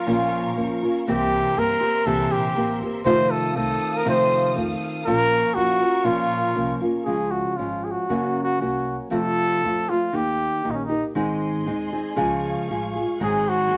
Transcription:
Already playing: A#4 F5 C#6
0.06 A#1 A#2 F3 A#3 C#4 F4
0.11 F4
0.55 F2 F3 A#3 C#4 F4
0.82 A#3 C#4 F4
1.07 C2 C3 E3 A#3 C4 G4 A#4 E5 C6
1.56 G2 E3 A#3 C4 G4 A#4
1.81 A#3 C4 G4
2.06 C2 C3 E3 A#3 C4 G4 A4
2.31 A#1 G4
2.55 A1 E3 A#3 C4 G4
2.81 G1 A#3 C4 G4
3.04 F2 C3 D#3 A3 C4 F4 A4 C5 F5 D#6
3.30 A4
3.55 C2 D#3 A3 C4 F4 A4
3.97 A#4
4.05 F2 C3 D#3 A3 C4 F4
4.09 C5
4.55 F2 D#3 A3 C4 F4
5.05 A#1 A#2 F3 A#3 C#4 F4 A#4 C#6
5.54 F2 F3 A#3 C#4 F4 F#4
5.80 A#3 C#4 F4
6.03 A#1 A#2 F3 A#3 C#4 F4
6.55 C2 F3 A#3 C#4 F4
6.81 A#3 C#4 F4
7.05 C#2 C#3 F3 G#3 C#4 F4 G#4
7.31 F#4
7.57 G#1 F3 G#3 C#4 F4
7.84 G#4
7.91 F#4
8.09 F#2 C#3 F#3 A#3 C#4 F#4
8.43 F#4
8.60 C2 F#3 A#3 C#4 F#4
9.11 F2 C3 F3 A3 C4 F4 A4
9.63 F2 F3 A3 C4 F4
9.89 F3 A3 C4 F4
10.12 D#2 D#3 A#3 D#4 G4
10.64 A#1 D#3 A#3 D#4 G4
10.71 C#4 D#4
10.81 D#4
10.89 A#3 D#4 G4
11.15 G#1 G#2 D#3 G#3 C4 D#4 G#4 D#5 C6
11.66 D#2 G#3 C4 D#4 G#4
11.93 G#3 C4 D#4 G#4
12.16 C#2 C#3 F3 G#3 F4 G#4 F5 C#6
12.69 A1 F3 G#3 F4 G#4
12.96 G#3 F4 G#4
13.20 G#1 G#2 D#3 F#3 G#3 C4 G#4 F#5 C6
13.49 F#4
13.69 D#2 F#3 G#3 C4 G#4

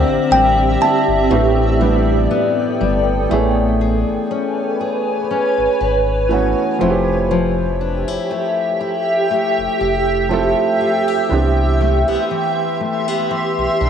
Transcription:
Already playing: D3 E3 A3 C4 D4 G4 D5 E5 G5
0.08 A1
0.31 A1 G3 G5
0.81 E4 A5
1.08 G1
1.29 A1 A2 E3 A3 B3 D4 A4 G5
1.33 G4
1.79 E3 G3 A3 B3 D4
1.84 G4
2.31 B3
2.81 G1 G3
3.29 A1 E3 A3 B3 C#4 B4 C#5 G#5
3.33 G#4
3.81 G#4
4.08 G#1
4.31 C#4
4.81 G#4
5.31 C#4
5.58 G#1
5.81 G#1 B4
6.29 E3 A3 B3 C#4
6.33 F#4
6.79 F1 F3 A3 C4 E4 G4 E5 G5
6.83 F#4
6.90 G4
7.31 F3
7.81 D4
8.08 F1 E4
8.31 A3
8.81 E4
9.31 A3
9.58 F1
9.81 F1 G4
10.29 F3 A3 C4 E4
10.33 A4
10.81 F4
11.08 G4
11.29 C2 E3 B3 C4 D4 G4 C6
11.34 G4
11.81 A3
12.08 B1 B3
12.31 E3
12.81 A3
13.08 B3
13.31 E3
13.58 B1
13.81 B1 D4

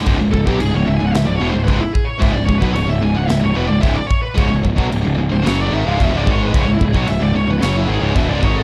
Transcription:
0.04 C#1 C#2 G#2, kick, crash
0.19 C#1 C#2 G#2
0.32 C#1 C#2 G#2 A4, kick
0.46 B1 B2 F#3 G4, kick
0.60 C#1 C#2 G#2 G#4, crash
0.74 C#1 C#2 G#2 C#5
0.86 C#1 C#2 G#2 E5
0.96 G#5
1.00 C#1 C#2 G#2
1.06 F#5
1.14 C#1 C#2 G#2 E5, snare, crash
1.25 C#1 C#2 G#2 D5
1.36 E2 C#5
1.41 E1 B2
1.49 C5
1.54 C#1 C#2 G#2
1.63 C#2 G#2 B4
1.68 C#1, kick, crash
1.78 E4
1.93 G#4, kick
2.05 C#5
2.20 C#1 C#2 G#2 E5, kick, crash
2.32 C#1 C#2 G#2 D5
2.45 C#1 C#2 C#5
2.49 G#2, kick
2.58 B1 B2 F#3 B4, kick
2.73 C#1 C#2 G#2 C#5, crash
2.87 C#1 C#2 G#2 E5
3.02 C#1 C#2 G#2 G#5
3.15 C#1 C#2 G#2 F#5
3.28 C#1 C#2 G#2 E5, snare, crash
3.41 C#1 C#2 G#2 C#5
3.45 C#2 G#2
3.55 E1 E2 B2 B4
3.67 C#1 C#2 G#2 D5
3.80 C#1 C#2 G#2 E5, kick, crash
3.84 C#2 G#2
3.94 D5
4.07 C#5, kick
4.22 B4
4.34 C#1 C#2 G#2 C#5, kick, crash
4.39 C#2
4.49 C#1 C#2 G#2
4.63 C#1 C#2 G#2, kick
4.76 B1 B2 F#3, kick
4.87 C#2 G#2
4.92 C#1, crash
5.02 C#1 C#2 G#2
5.15 C#2 G#2
5.19 C#1
5.29 C#1 C#2 G#2 C5
5.42 F#2 C#3 F#3
5.46 F#1 C#5, snare, crash
5.61 D5
5.70 G#1 G#2 D#3
5.74 E5
5.83 C#1 C#2 G#2 F5
5.98 E1 E2 B2 E5, kick, crash
6.13 C#1 C#2 G#2 D5
6.25 G#1 G#2 D#3 G#3, kick
6.31 C#5
6.44 B4
6.54 C#1 C#2 G#2, kick, crash
6.60 C#5
6.67 C#1 C#2 G#2
6.73 E4
6.81 C#1 C#2 G#2, kick
6.85 G#4
6.94 B1 B2 F#3 C#5, kick
7.07 C#1 C#2 G#2 E5, crash
7.21 C#1 C#2 G#2 D5
7.34 C#1 C#2 G#2 C#5
7.48 C#1 C#2 G#2 B4
7.62 F#1 F#2 C#3 F#3 C#5, snare, crash
7.77 E4
7.86 G#1 G#2 D#3 G#4
7.90 G#2 D#3
8.01 C#1 C#2 G#2 C#5
8.15 E1 E2 B2 E5, kick, crash
8.29 C#1 C#2 G#2 D5
8.41 G#1 G#2 D#3 G#3 C#5, kick
8.56 A4

